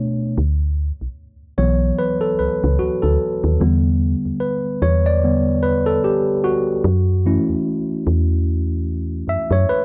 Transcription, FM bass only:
0.38 0.92 D2 medium
1.01 1.08 B1 soft
1.58 1.93 B1 medium
2.39 2.49 C#2 soft
2.64 2.78 C#2 loud
2.80 2.90 D2 soft
3.03 3.18 D2 medium
3.44 3.58 D#2 loud
3.61 4.16 E2 loud
4.25 4.32 E2 soft
4.82 5.99 E2 medium
6.84 7.39 F#2 loud
7.49 7.56 E2 soft
8.07 9.24 E2 medium
9.28 9.37 F#2 soft
9.51 9.65 F#2 medium

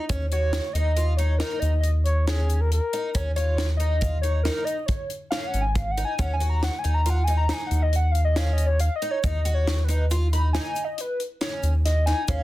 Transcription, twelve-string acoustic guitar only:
0.09 0.25 C#4 medium
0.32 0.64 F#4 medium
0.76 0.91 D#4 medium
0.97 1.13 F4 medium
1.19 1.34 D#4 medium
1.40 1.72 D#4 medium
2.27 2.59 C#4 medium
2.93 3.09 D#4 medium
3.15 3.31 C#4 medium
3.36 3.68 F4 medium
3.80 3.96 D#4 medium
4.01 4.17 F4 medium
4.23 4.39 D#4 medium
4.45 4.77 D#4 medium
5.32 5.64 C#4 medium
5.98 6.13 D#4 medium
6.19 6.35 C#4 medium
6.40 6.72 F#4 medium
6.84 7.00 D#4 medium
7.06 7.22 F4 medium
7.28 7.44 D#4 medium
7.50 7.81 D#4 medium
8.36 8.68 C#4 medium
9.02 9.18 D#4 medium
9.24 9.39 D#4 medium
9.45 9.77 F#4 medium
9.88 10.04 D#4 medium
10.11 10.27 F4 medium
10.33 10.49 D#4 medium
10.55 10.86 D#4 medium
11.41 11.73 C#4 medium
12.07 12.23 D#4 medium
12.29 12.43 C#4 loud

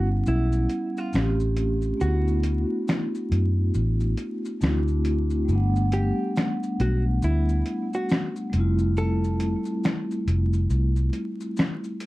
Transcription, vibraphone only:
0.00 1.08 G3 medium
0.00 1.09 B3 medium
0.00 1.10 C#4 medium
0.00 1.12 E4 medium
0.00 1.13 F#5 medium
1.13 1.96 A3 medium
1.13 2.01 C4 medium
1.13 2.01 C#4 medium
1.13 2.02 F4 medium
1.18 2.03 G4 medium
1.97 4.56 A3 medium
1.97 4.57 B3 medium
2.02 4.58 D4 medium
2.02 4.60 E4 medium
2.07 4.61 F#4 medium
4.60 5.47 A3 medium
4.60 5.49 C4 medium
4.60 5.49 D4 medium
4.60 5.50 E4 medium
4.65 5.50 F#4 medium
5.45 8.47 G3 medium
5.45 8.49 A3 medium
5.50 8.50 B3 medium
5.50 8.51 D4 medium
5.55 8.52 F#5 medium
8.50 11.95 G3 medium
8.50 11.96 A3 medium
8.55 11.98 C4 medium
8.55 11.99 E4 medium
8.60 12.00 F4 medium

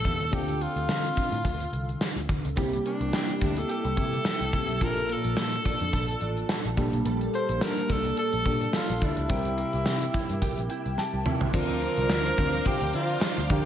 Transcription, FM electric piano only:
0.32 1.13 D3 medium
0.32 2.52 C4 medium
0.32 2.53 D4 medium
0.32 2.53 F4 medium
0.32 2.54 A4 medium
2.56 3.37 C3 medium
2.56 4.77 A#3 medium
2.56 4.77 C4 medium
2.56 4.78 E4 medium
2.56 4.78 G4 medium
4.81 5.61 A#2 medium
4.81 6.73 A#3 medium
4.81 6.74 D4 medium
4.81 6.74 F4 medium
4.81 4.89 G4 medium
4.90 6.78 A4 medium
6.77 7.58 A#2 medium
6.77 8.42 A#3 medium
6.77 8.42 D4 medium
6.77 8.43 G4 medium
6.77 8.43 A4 medium
8.45 9.29 A#3 soft
8.45 9.30 D4 soft
8.45 9.29 G4 soft
8.45 9.30 A4 medium
9.29 10.10 C3 medium
9.29 11.49 C4 medium
9.29 11.50 E4 medium
9.29 11.50 G4 medium
9.29 11.51 A#4 medium
10.70 10.96 G5 medium
10.98 11.50 A5 medium
11.53 12.34 D3 medium
11.53 13.46 C4 medium
11.53 13.46 D4 medium
11.53 13.47 F4 medium
11.53 13.47 A#4 medium
13.50 13.65 D3 medium
13.50 13.65 D4 medium
13.50 13.65 F4 medium
13.50 13.65 G4 medium
13.50 13.65 A#4 medium

